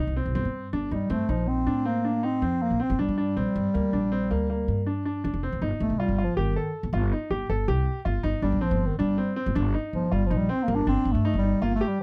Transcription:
0.00 0.13 D#4 medium
0.07 0.25 C2 medium
0.16 0.32 C4 medium
0.25 0.34 C2 medium
0.35 0.44 G1 medium
0.35 0.66 C4 medium
0.45 0.72 G2 medium
0.73 0.93 G1 medium
0.73 0.88 D4 medium
0.91 1.09 G2 medium
0.91 1.13 G3 medium
0.91 1.07 D#4 medium
1.10 1.19 G2 medium
1.10 1.32 A3 medium
1.10 1.26 C4 medium
1.29 1.65 A#1 medium
1.29 1.50 F3 medium
1.29 1.60 D#4 medium
1.48 1.88 C4 loud
1.67 2.38 A2 medium
1.67 1.82 D4 medium
1.85 2.26 A#3 medium
1.85 2.01 C4 medium
2.05 2.20 D4 medium
2.23 2.64 C4 loud
2.23 2.38 D#4 medium
2.42 2.69 F2 medium
2.42 2.73 C4 medium
2.63 2.84 A#3 medium
2.70 2.79 A#1 medium
2.80 2.95 C4 medium
2.80 3.00 C4 medium
2.90 2.98 G1 medium
2.99 3.08 G1 medium
2.99 5.21 G3 medium
2.99 3.14 D4 medium
3.08 3.35 G2 medium
3.18 3.33 D4 medium
3.37 3.46 A#1 medium
3.37 3.67 C4 medium
3.56 3.64 G2 medium
3.74 3.83 D2 medium
3.74 3.89 A#3 medium
3.93 4.29 A#1 medium
3.93 4.08 D4 medium
4.12 4.27 C4 medium
4.31 4.66 D2 medium
4.31 4.46 A#3 medium
4.50 4.80 A#3 medium
4.68 5.21 G2 medium
4.86 5.02 D4 medium
5.05 5.21 D4 medium
5.24 5.33 F1 medium
5.24 5.39 D4 medium
5.34 5.51 F1 medium
5.43 5.58 C4 medium
5.52 5.61 F1 medium
5.62 5.71 G1 medium
5.62 5.92 D#4 medium
5.80 5.89 G1 medium
5.80 6.00 A3 medium
5.90 6.08 C2 medium
5.99 6.25 G3 medium
5.99 6.15 F4 medium
6.08 6.26 G1 medium
6.18 6.34 F4 medium
6.24 6.37 F3 medium
6.36 6.55 G1 medium
6.36 6.74 D#3 medium
6.36 6.52 G4 medium
6.56 6.87 A4 medium
6.83 6.92 G1 medium
6.93 7.11 G1 medium
6.93 7.09 F4 medium
7.12 7.27 D#4 medium
7.30 7.48 G1 medium
7.30 7.46 G4 medium
7.49 7.67 G1 medium
7.49 7.65 A4 medium
7.68 7.86 C2 medium
7.68 7.99 G4 medium
8.05 8.23 G1 medium
8.05 8.21 F4 medium
8.23 8.33 G1 medium
8.23 8.39 D#4 medium
8.42 8.51 G1 medium
8.42 8.62 G3 medium
8.42 8.58 D4 medium
8.52 8.70 A#1 medium
8.61 8.88 F3 loud
8.61 8.92 C4 medium
8.71 8.89 G1 medium
8.86 8.98 D#3 medium
8.98 9.18 G1 medium
8.98 9.34 G3 medium
8.98 9.14 D4 medium
9.18 9.33 C4 medium
9.36 9.52 C4 medium
9.46 9.55 G1 medium
9.55 9.74 G1 loud
9.55 9.71 D4 medium
9.74 10.05 D#4 medium
9.93 10.11 G1 medium
9.93 10.14 F3 medium
10.12 10.30 G1 medium
10.12 10.28 G3 medium
10.12 10.27 F4 medium
10.26 10.38 F3 medium
10.30 10.49 A#1 medium
10.30 10.46 D#4 medium
10.37 10.52 G3 medium
10.49 10.65 C4 medium
10.64 10.77 A#3 medium
10.68 10.86 G1 loud
10.68 10.83 A#3 medium
10.75 10.88 D4 loud
10.87 10.96 G1 medium
10.87 11.14 C4 loud
10.87 11.17 D4 medium
11.05 11.14 G1 medium
11.13 11.33 G2 medium
11.13 11.37 A3 medium
11.25 11.40 D#4 medium
11.34 11.52 G1 medium
11.38 11.64 G3 loud
11.43 11.58 D#4 medium
11.62 11.80 G1 medium
11.62 11.74 A#3 medium
11.62 11.77 F4 medium
11.75 11.90 A3 medium
11.81 12.03 G4 medium
11.88 12.00 G3 medium

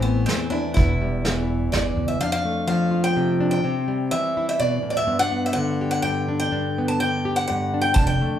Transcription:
0.00 0.24 A1 medium
0.00 0.29 A2 medium
0.00 0.73 E3 medium
0.00 0.74 A3 medium
0.00 0.28 B3 medium
0.00 0.74 C4 medium
0.00 0.51 E4 medium
0.26 0.76 E2 medium
0.26 0.52 C4 medium
0.26 snare medium
0.26 closed hi-hat soft
0.50 0.74 D4 medium
0.50 2.20 E4 medium
0.74 1.68 E1 loud
0.74 1.95 E2 medium
0.74 1.67 E4 medium
0.74 kick medium
0.74 closed hi-hat soft
0.78 1.24 B3 medium
1.01 2.21 G3 medium
1.25 2.18 E3 medium
1.25 2.21 B3 medium
1.25 snare medium
1.25 closed hi-hat soft
1.72 1.94 G1 medium
1.72 2.06 D5 medium
1.72 snare medium
1.72 closed hi-hat soft
1.96 2.18 F#1 medium
1.96 2.20 E2 medium
2.08 2.19 E5 medium
2.20 3.61 F2 medium
2.20 3.39 D4 medium
2.20 2.31 F5 medium
2.32 2.66 F5 medium
2.45 3.62 A3 medium
2.67 3.61 F3 medium
2.67 3.03 F5 medium
2.91 3.61 F4 medium
3.04 3.49 G5 medium
3.17 3.61 C3 medium
3.40 3.61 D4 medium
3.51 4.11 G5 medium
3.64 4.12 C3 medium
3.64 5.05 C4 medium
3.88 5.31 G3 medium
4.11 5.05 E3 medium
4.11 4.45 E5 medium
4.37 5.08 E4 medium
4.49 4.60 E5 medium
4.60 4.82 B2 medium
4.60 4.89 D5 medium
4.82 5.07 A2 medium
4.90 4.96 D5 medium
4.97 5.19 E5 medium
5.07 6.02 G2 medium
5.07 5.19 B3 medium
5.19 6.27 D4 medium
5.19 5.45 F#5 loud
5.31 6.48 B3 medium
5.46 5.53 E5 medium
5.53 6.99 D3 medium
5.53 5.90 F#5 medium
5.81 6.49 G4 medium
5.91 6.02 F#5 medium
6.02 6.48 G2 medium
6.02 6.38 G5 medium
6.28 6.52 D4 medium
6.40 6.84 G5 medium
6.52 7.47 G2 medium
6.52 7.71 D4 medium
6.78 7.94 B3 medium
6.88 7.00 A5 medium
7.00 8.39 D3 medium
7.00 7.33 G5 medium
7.25 7.93 G4 medium
7.36 7.46 F#5 medium
7.48 7.94 G2 medium
7.48 7.81 F#5 medium
7.74 7.94 D4 medium
7.81 7.94 G5 medium
7.94 8.18 F1 medium
7.94 8.39 F2 medium
7.94 8.06 A5 loud
7.94 kick medium
7.94 closed hi-hat medium
7.99 8.39 D4 medium
8.07 8.39 G5 loud
8.22 8.39 A3 medium

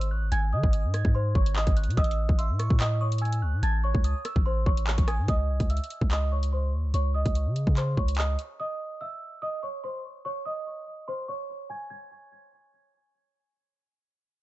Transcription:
0.00 0.13 G#1 loud
0.00 closed hi-hat medium
0.11 0.24 A1 loud
0.11 0.31 F#6 medium
0.22 0.31 G#1 loud
0.32 0.54 G#1 loud
0.32 0.48 G#5 loud
0.32 0.71 G#6 loud
0.32 0.48 G#6 medium
0.32 closed hi-hat medium
0.53 0.63 D#3 loud
0.53 1.11 D#5 medium
0.53 1.11 D#6 medium
0.63 0.86 G#1 loud
0.63 kick loud
0.73 0.93 D#6 medium
0.73 closed hi-hat medium
0.84 1.04 G#2 loud
0.94 1.73 G#6 medium
0.94 cross-stick medium
0.94 closed hi-hat medium
1.05 1.34 G#2 loud
1.05 kick loud
1.15 1.31 C5 medium
1.15 1.31 C6 medium
1.35 1.66 G#1 loud
1.35 1.52 C#5 medium
1.35 1.51 C#6 medium
1.35 kick medium
1.46 closed hi-hat medium
1.56 1.72 D#5 medium
1.56 1.72 D#6 medium
1.56 clap loud
1.67 1.89 G#1 loud
1.67 kick medium
1.67 closed hi-hat medium
1.77 1.96 F#6 medium
1.77 closed hi-hat medium
1.84 closed hi-hat medium
1.88 1.97 C3 loud
1.88 closed hi-hat medium
1.97 2.28 A1 loud
1.97 2.37 D#5 medium
1.97 2.36 D#6 loud
1.97 2.36 E6 loud
1.97 kick loud
1.97 closed hi-hat medium
2.04 closed hi-hat medium
2.11 closed hi-hat medium
2.29 2.51 A1 loud
2.29 kick loud
2.38 2.78 E5 medium
2.38 2.58 C6 medium
2.38 2.78 E6 medium
2.38 closed hi-hat medium
2.50 2.69 A2 loud
2.59 2.98 C#6 medium
2.59 cross-stick medium
2.59 closed hi-hat medium
2.70 3.44 A2 loud
2.70 kick loud
2.80 2.97 D#5 medium
2.80 2.96 D#6 medium
2.80 clap loud
2.80 closed hi-hat medium
3.01 3.17 C#5 medium
3.01 3.17 C#6 medium
3.01 3.20 D#6 medium
3.12 closed hi-hat medium
3.18 3.37 G#5 medium
3.18 3.41 E6 medium
3.18 3.38 G#6 medium
3.18 closed hi-hat medium
3.25 closed hi-hat soft
3.32 closed hi-hat medium
3.42 3.55 C#2 loud
3.42 3.62 F#6 medium
3.53 3.62 A2 loud
3.63 3.93 A1 loud
3.63 3.79 A5 medium
3.63 4.02 G#6 loud
3.63 3.79 A6 medium
3.63 closed hi-hat medium
3.84 4.42 C#5 medium
3.84 4.42 C#6 medium
3.95 4.14 C#2 loud
3.95 kick medium
4.04 4.24 D#6 medium
4.04 closed hi-hat medium
4.25 4.84 E6 medium
4.25 cross-stick medium
4.25 closed hi-hat medium
4.36 4.65 A1 loud
4.36 kick loud
4.46 4.62 C5 medium
4.46 4.62 C6 medium
4.66 4.97 A1 loud
4.66 5.06 C#5 medium
4.66 5.05 C#6 medium
4.66 kick loud
4.77 closed hi-hat medium
4.87 5.06 C#6 medium
4.87 clap loud
4.98 5.20 A1 loud
4.98 kick loud
4.98 closed hi-hat medium
5.08 5.24 G#5 medium
5.08 5.27 D#6 medium
5.08 5.24 G#6 medium
5.08 cross-stick loud
5.08 closed hi-hat medium
5.19 5.28 A2 loud
5.28 5.51 C#2 loud
5.28 5.68 D#5 medium
5.28 5.67 D#6 loud
5.28 kick loud
5.28 closed hi-hat medium
5.49 5.60 C2 loud
5.60 5.80 C#2 loud
5.60 kick medium
5.60 closed hi-hat medium
5.70 6.09 E5 medium
5.70 6.09 E6 medium
5.70 closed hi-hat medium
5.77 closed hi-hat medium
5.84 closed hi-hat medium
5.90 closed hi-hat medium
6.01 6.75 C#2 loud
6.01 kick loud
6.11 6.28 D#5 medium
6.11 6.27 D#6 medium
6.11 clap loud
6.11 closed hi-hat medium
6.32 6.48 C#5 medium
6.32 6.48 C#6 medium
6.43 closed hi-hat medium
6.53 6.69 C5 medium
6.53 6.69 C6 medium
6.73 6.86 D#2 loud
6.84 6.93 C#2 loud
6.94 7.24 C#2 loud
6.94 7.10 C#5 medium
6.94 7.10 C#6 medium
6.94 closed hi-hat medium
7.14 7.73 D#5 medium
7.14 7.73 D#6 medium
7.26 7.48 C#2 loud
7.26 kick medium
7.26 closed hi-hat medium
7.35 closed hi-hat medium
7.46 7.66 C#3 loud
7.56 closed hi-hat medium
7.67 7.96 C#3 loud
7.67 kick loud
7.77 7.93 C5 medium
7.77 7.93 C6 medium
7.77 clap medium
7.77 closed hi-hat medium
7.97 8.37 C#2 loud
7.97 8.14 C#5 medium
7.97 8.13 C#6 medium
7.97 kick medium
8.08 closed hi-hat medium
8.15 8.34 D#5 medium
8.15 8.34 D#6 medium
8.15 clap loud
8.15 closed hi-hat medium
8.22 closed hi-hat soft
8.39 closed hi-hat medium
8.60 8.99 D#5 medium
8.60 8.98 D#6 medium
9.01 9.40 E5 medium
9.01 9.40 E6 medium
9.42 9.59 D#5 medium
9.42 9.58 D#6 medium
9.63 9.79 C#5 medium
9.63 9.79 C#6 medium
9.84 10.00 C5 medium
9.84 10.00 C6 medium
10.25 10.41 C#5 medium
10.25 10.41 C#6 medium
10.45 11.04 D#5 medium
10.45 11.04 D#6 medium
11.08 11.24 C5 medium
11.08 11.24 C6 medium
11.28 11.68 C#5 medium
11.28 11.67 C#6 medium
11.70 11.86 G#5 medium
11.70 11.86 G#6 medium
11.90 13.11 G#6 medium

